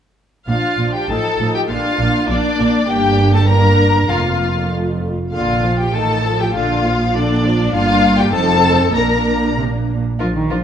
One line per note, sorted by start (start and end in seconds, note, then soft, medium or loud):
0.47 0.55 A#1 soft
0.47 0.55 A#2 soft
0.47 0.77 F3 soft
0.47 0.77 D4 soft
0.47 0.91 F4 soft
0.47 0.90 F5 medium
0.78 0.86 A#1 soft
0.78 0.87 A#2 soft
0.78 1.08 F3 soft
0.78 1.08 D4 soft
0.95 1.09 G4 soft
0.95 1.09 G5 medium
1.08 1.17 A1 soft
1.08 1.17 A2 medium
1.08 1.38 F3 soft
1.08 1.38 D#4 soft
1.08 1.54 A4 medium
1.08 1.54 A5 medium
1.39 1.47 A1 soft
1.39 1.47 A2 soft
1.39 1.69 F3 soft
1.39 1.69 D#4 soft
1.55 1.61 G4 medium
1.55 1.61 G5 medium
1.69 1.77 A#1 soft
1.69 1.77 A#2 medium
1.69 1.97 A#3 soft
1.69 1.97 D4 soft
1.69 2.28 F4 medium
1.69 2.28 F5 medium
1.99 2.07 A#1 soft
1.99 2.07 A#2 medium
1.99 2.27 A#3 medium
1.99 2.27 D4 soft
2.28 2.36 A#1 medium
2.28 2.37 A#2 medium
2.28 2.57 A#3 soft
2.28 2.57 D4 soft
2.28 2.88 D4 medium
2.28 2.87 D5 medium
2.58 2.66 A#1 medium
2.58 2.66 A#2 medium
2.58 2.87 A#3 medium
2.58 2.86 D4 medium
2.87 4.04 G1 medium
2.87 4.04 G2 medium
2.87 3.44 A#3 medium
2.87 3.43 D4 medium
2.87 3.32 G4 medium
2.87 3.33 G5 medium
3.34 3.48 A4 medium
3.34 3.48 A5 medium
3.48 4.08 A#3 medium
3.48 4.07 D4 medium
3.48 4.08 A#4 medium
3.48 4.08 A#5 medium
4.08 5.10 F1 soft
4.08 5.10 F2 soft
4.08 4.70 A#3 soft
4.08 4.71 F4 soft
4.08 4.70 F4 soft
4.08 4.71 F5 medium
4.72 5.13 A3 soft
4.72 5.12 F4 soft
5.32 5.90 A#1 soft
5.32 5.90 A#2 soft
5.32 5.61 D3 soft
5.32 5.61 D4 soft
5.32 5.75 F4 medium
5.32 5.75 F5 medium
5.63 5.94 F3 soft
5.63 5.94 F4 soft
5.78 5.93 G4 soft
5.78 5.95 G5 medium
5.93 6.55 A1 soft
5.93 6.55 A2 soft
5.93 6.23 D#3 soft
5.93 6.23 D#4 soft
5.93 6.40 A4 medium
5.93 6.40 A5 medium
6.25 6.55 F3 soft
6.25 6.55 F4 soft
6.39 6.55 G4 medium
6.39 6.56 G5 medium
6.54 7.74 A#1 soft
6.54 7.74 A#2 soft
6.54 6.84 D3 soft
6.54 6.84 D4 soft
6.54 7.14 F4 medium
6.54 7.14 F5 medium
6.86 7.16 F3 soft
6.86 7.16 F4 soft
7.15 7.45 D3 soft
7.15 7.73 D4 medium
7.15 7.45 D4 soft
7.15 7.74 D5 medium
7.45 7.74 F3 soft
7.45 7.74 F4 medium
7.74 8.30 G1 medium
7.74 8.30 G2 medium
7.74 8.30 A#3 medium
7.74 8.30 D4 medium
7.74 8.18 F4 medium
7.74 8.18 F5 medium
8.19 8.34 G4 medium
8.19 8.34 G5 medium
8.33 8.95 F1 medium
8.33 8.95 F2 medium
8.33 8.95 C4 medium
8.33 8.94 D#4 medium
8.33 8.94 A4 medium
8.33 8.94 A5 medium
8.94 9.98 A#1 soft
8.94 9.50 A#2 soft
8.94 9.97 A#3 soft
8.94 9.99 D4 medium
8.94 9.58 A#4 medium
8.94 9.56 A#5 medium
9.58 9.66 C3 medium
9.89 10.20 A#2 soft
10.19 10.64 A#1 soft
10.19 10.26 F3 medium
10.19 10.27 D4 soft
10.19 10.28 F4 soft
10.19 10.28 A#4 soft
10.36 10.51 D#3 medium
10.49 10.64 F3 medium
10.49 10.57 D4 soft
10.49 10.58 F4 soft
10.49 10.59 A#4 soft